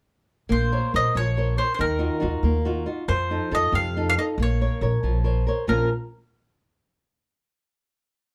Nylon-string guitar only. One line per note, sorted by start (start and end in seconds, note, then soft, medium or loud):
0.49 0.92 A#3 medium
0.72 0.93 A#4 soft
0.72 0.94 C5 soft
0.72 0.94 C#5 soft
0.94 1.29 A#4 soft
0.94 1.29 C5 soft
0.94 1.29 C#5 soft
1.16 1.57 F3 soft
1.37 1.56 A#4 soft
1.37 1.57 C5 soft
1.37 1.57 C#5 soft
1.57 1.75 A#4 soft
1.57 1.75 C5 soft
1.57 1.75 C#5 soft
1.79 2.21 D#3 medium
1.99 2.19 D#4 soft
1.99 2.19 F4 soft
1.99 2.20 F#4 soft
2.20 2.56 D#4 soft
2.20 2.56 F4 soft
2.20 2.56 F#4 soft
2.44 2.86 A#3 soft
2.65 2.85 D#4 soft
2.65 2.85 F4 soft
2.65 2.86 F#4 soft
2.86 3.04 D#4 soft
2.86 3.04 F4 soft
2.86 3.04 F#4 soft
3.08 3.50 F3 medium
3.31 3.51 D#4 soft
3.31 3.50 F4 soft
3.31 3.51 A4 soft
3.51 3.87 D#4 soft
3.51 3.86 F4 soft
3.51 3.86 A4 soft
3.73 4.15 C3 medium
3.97 4.17 D#4 soft
3.97 4.17 F4 soft
3.97 4.17 A4 soft
4.18 4.34 D#4 soft
4.18 4.34 F4 soft
4.18 4.35 A4 soft
4.40 4.81 A#3 medium
4.61 4.81 A#4 soft
4.61 4.82 C#5 soft
4.82 5.16 A#4 soft
4.82 5.17 C#5 soft
5.04 5.45 F3 soft
5.24 5.46 A#4 soft
5.24 5.47 C5 soft
5.24 5.47 C#5 soft
5.47 5.64 A#4 soft
5.47 5.64 C5 soft
5.47 5.65 C#5 soft
5.67 5.88 A#2 soft
5.67 5.88 F3 soft
5.67 5.88 A#3 soft
5.67 5.88 C#4 soft
5.67 5.89 F4 medium